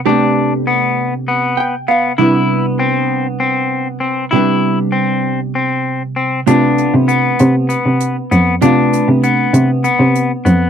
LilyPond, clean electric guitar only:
\new Staff \with { instrumentName = "Clean electric guitar" } { \time 7/8 \key c \major \tempo 4 = 98 d'4 b4 b4 b8 | e'4 c'4 c'4 c'8 | e'4 c'4 c'4 c'8 | d'4 b4 b4 b8 |
d'4 b4 b4 b8 | }